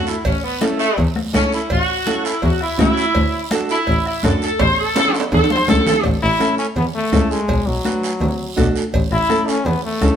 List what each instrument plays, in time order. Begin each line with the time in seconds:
Already playing: nylon-string guitar D4 F#4 A4
0.07 saxophone section E4, short guiro
0.25 double bass A1, saxophone section C#4, bombo low, cowbell, high conga, long guiro
0.43 saxophone section B3
0.61 saxophone section A3, nylon-string guitar C#4 E4 A4, bombo rim, high conga, short guiro
0.79 saxophone section A3, short guiro
0.97 double bass E2, bombo low, cowbell, high conga, long guiro
1.16 bombo rim, high conga
1.33 double bass C#2, nylon-string guitar C#4 E4 A4, saxophone section C#4, bombo rim, high conga, low timbale, short guiro
1.52 saxophone section E4, short guiro
1.70 double bass A1, saxophone section F#4, bombo low, cowbell, high conga, long guiro
2.06 nylon-string guitar C#4 E4 A4, bombo rim, high conga, short guiro
2.24 saxophone section E4, short guiro
2.42 double bass E2, saxophone section F#4, bombo low, cowbell, high conga, long guiro
2.61 saxophone section E4, bombo rim
2.78 double bass C#2, nylon-string guitar C#4 E4 F#4, saxophone section E4, bombo rim, high conga, low conga, short guiro
2.97 short guiro
3.15 double bass D2, bombo low, cowbell, high conga, long guiro
3.51 nylon-string guitar D4 F#4 A4, bombo rim, high conga, short guiro
3.69 saxophone section E4, short guiro
3.87 double bass A1, bombo low, cowbell, high conga, long guiro
4.06 saxophone section E4, bombo rim
4.23 double bass F#2, nylon-string guitar D4 F#4 A4, saxophone section A4, bombo low, bombo rim, high conga, short guiro
4.42 saxophone section A4, short guiro
4.59 double bass A1, saxophone section C5, bombo low, cowbell, high conga, high timbale, long guiro
4.78 saxophone section A4
4.95 nylon-string guitar C#4 E4 A4, saxophone section A4, bombo rim, high conga, high timbale, short guiro
5.08 low timbale
5.14 short guiro
5.20 high timbale
5.32 double bass E2, saxophone section A4, bombo low, cowbell, high conga, low timbale, long guiro
5.44 low timbale
5.50 saxophone section C5, high conga
5.56 low timbale
5.68 double bass C#2, nylon-string guitar C#4 E4 A4, saxophone section A4, bombo low, bombo rim, high conga, low timbale, short guiro
5.80 low timbale
5.86 saxophone section A4, low conga, short guiro
5.92 low timbale
6.03 double bass A1, bombo low, cowbell, high conga, long guiro
6.22 double bass A1, trombone E4, bombo rim
6.39 nylon-string guitar C#4 E4 A4, bombo rim, high conga, short guiro
6.58 trombone C#4, short guiro
6.76 double bass E2, trombone B3, cowbell, high conga, low conga, long guiro
6.95 trombone A3
7.12 double bass C#2, nylon-string guitar C#4 E4 A4, bombo low, bombo rim, high conga, short guiro
7.31 trombone G#3, short guiro
7.49 double bass B1, bombo low, cowbell, high conga, long guiro
7.67 double bass B1, trombone F#3
7.84 nylon-string guitar D4 F#4 B4, bombo rim, high conga, short guiro
8.03 short guiro
8.21 double bass D2, cowbell, high conga, low conga, long guiro
8.56 double bass B1, nylon-string guitar D4 F#4 A4, bombo low, bombo rim, high conga, short guiro
8.76 short guiro
8.94 double bass A1, bombo low, cowbell, high conga, long guiro
9.12 double bass A1, trombone E4, bombo rim
9.29 nylon-string guitar C#4 E4 A4, bombo rim, high conga, short guiro
9.48 trombone C#4, short guiro
9.66 double bass E2, trombone B3, cowbell, high conga, low conga, long guiro
9.84 trombone A3
10.01 double bass C#2, nylon-string guitar C#4 E4 A4, bombo low, bombo rim, high conga, low timbale, short guiro